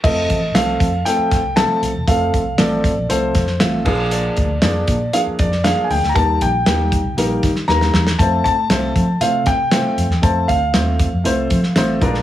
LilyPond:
<<
  \new Staff \with { instrumentName = "Grand piano" } { \time 4/4 \key f \mixolydian \tempo 4 = 118 ees''4 f''4 g''4 a''4 | f''4 d''4 c''4. r8 | d''4 d''4 f''8 d''8 f''16. aes''32 g''16. bes''32 | a''8 g''2 r8 bes''4 |
a''8 a''4. f''8 g''4. | a''8 f''2. r8 | }
  \new Staff \with { instrumentName = "Upright piano" } { \time 4/4 \key f \mixolydian <f a c' a'>8 r8 <f a c' a'>8 r8 <f a c' a'>8 r8 <f a c' a'>8 r8 | <f a c' a'>8 r8 <f a c' a'>8 r8 <f a c' a'>8 r8 <f a c' f'>8 <f bes d' aes'>8~ | <f bes d' aes'>8 r8 <f bes d' aes'>8 r8 <f bes d' aes'>8 r8 <f bes d' aes'>8 r8 | <g bes ees' bes'>8 r8 <g bes ees' bes'>8 r8 <g bes ees' bes'>8 r8 <g bes ees' bes'>8 r8 |
<a c' f' c''>8 r8 <a c' f' c''>8 r8 <a c' f' c''>8 r8 <a c' f' c''>8 r8 | <a c' f' c''>8 r8 <a c' f' c''>8 r8 <a c' f' c''>8 r8 <a c' f' c''>8 <aes d' f' bes'>8 | }
  \new Staff \with { instrumentName = "Fingered electric bass" } { \clef bass \time 4/4 \key f \mixolydian f,,8 a,,8 c,8 f,8 r8 c,8. r16 c,16 e,,16 | f,,8 c,8 a,,8. bes,,16 c,8 f,8 a,,8 bes,,8~ | bes,,8 d,8 f,8 bes,8 r8 f,8. r16 d,16 d,16 | ees,8 bes,,8 ees,8. c,16 bes,,8 ees8 ees,8 e,8 |
f,8 a,8 c,8 f8 c8 c8. r16 f,16 e,16 | f,8 d,8 ees,8. f,16 c,8 f8 a,,8 bes,,8 | }
  \new DrumStaff \with { instrumentName = "Drums" } \drummode { \time 4/4 <cymc bd>8 <hh bd>8 <hh sn>8 <hh bd>8 hh8 <hh bd sn>8 <hh sn>8 hh8 | <hh bd>8 <hh bd>8 <hh sn>8 <hh bd>8 hh8 <hh bd sn>16 sn16 <hh sn>8 <cymc bd>8 | hh8 <hh bd>8 <hh sn>8 <hh bd>8 hh8 <hh bd>16 sn16 <hh sn>8 hho16 sn16 | <hh bd>8 <hh bd>8 <hh sn>8 <hh bd>8 hh8 <hh bd sn>16 sn16 sn16 sn16 sn16 sn16 |
<hh bd>8 <hh bd>8 <hh sn>8 <hh bd>8 hh8 <hh bd sn>8 <hh sn>8 hh16 sn16 | <hh bd>8 <hh bd>8 <hh sn>8 <hh bd>8 hh8 <hh bd>16 sn16 <hh sn>8 <hh bd>16 sn16 | }
>>